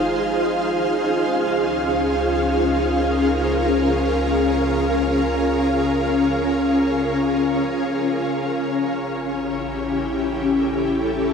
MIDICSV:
0, 0, Header, 1, 3, 480
1, 0, Start_track
1, 0, Tempo, 500000
1, 10880, End_track
2, 0, Start_track
2, 0, Title_t, "Ambient pad"
2, 0, Program_c, 0, 92
2, 0, Note_on_c, 0, 63, 80
2, 0, Note_on_c, 0, 65, 62
2, 0, Note_on_c, 0, 68, 70
2, 0, Note_on_c, 0, 72, 72
2, 0, Note_on_c, 0, 77, 73
2, 661, Note_on_c, 0, 61, 78
2, 2190, Note_on_c, 0, 70, 68
2, 2901, Note_off_c, 0, 63, 0
2, 3551, Note_off_c, 0, 72, 0
2, 7969, Note_off_c, 0, 68, 0
2, 7976, Note_off_c, 0, 77, 0
2, 7982, Note_off_c, 0, 70, 0
2, 7991, Note_off_c, 0, 65, 0
2, 8661, Note_on_c, 0, 64, 87
2, 8750, Note_on_c, 0, 67, 85
2, 9686, Note_on_c, 0, 69, 70
2, 10371, Note_on_c, 0, 76, 69
2, 10880, Note_off_c, 0, 61, 0
2, 10880, Note_off_c, 0, 64, 0
2, 10880, Note_off_c, 0, 67, 0
2, 10880, Note_off_c, 0, 69, 0
2, 10880, Note_off_c, 0, 76, 0
2, 10880, End_track
3, 0, Start_track
3, 0, Title_t, "Synth drone"
3, 0, Program_c, 1, 95
3, 0, Note_on_c, 1, 32, 79
3, 620, Note_off_c, 1, 32, 0
3, 674, Note_on_c, 1, 37, 90
3, 7940, Note_off_c, 1, 37, 0
3, 7987, Note_on_c, 1, 33, 80
3, 10880, Note_off_c, 1, 33, 0
3, 10880, End_track
0, 0, End_of_file